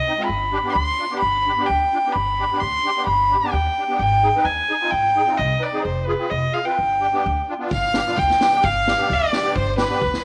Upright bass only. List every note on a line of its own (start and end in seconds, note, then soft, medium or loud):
0.29 0.57 G1 medium
0.75 0.89 D2 medium
1.22 1.50 G1 medium
1.70 1.83 D2 medium
2.16 2.43 G1 medium
2.61 2.75 D2 medium
3.07 3.35 G1 medium
3.53 3.67 D#2 medium
3.99 4.27 G#1 medium
4.45 4.59 D#2 medium
4.92 5.20 G#1 medium
5.39 5.53 C2 loud
5.85 6.13 F1 medium
6.31 6.45 F1 medium
6.79 7.06 G1 medium
7.26 7.39 D2 medium
7.72 7.99 G1 medium
8.18 8.32 D2 medium
8.63 8.91 G1 medium
9.10 9.24 D2 medium
9.55 9.83 G1 medium
10.02 10.16 D2 medium